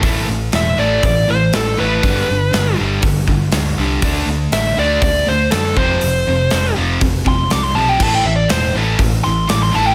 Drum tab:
CC |--------|--------|--------|--------|
HH |o-o-o-o-|o-o-o-o-|o-o-o-o-|o-o-o-o-|
SD |--o---o-|--o---o-|--o---o-|--o---o-|
BD |o---o---|o---oo--|o---o--o|----oo--|

CC |x-------|
HH |--o-o-o-|
SD |--o---o-|
BD |o---o---|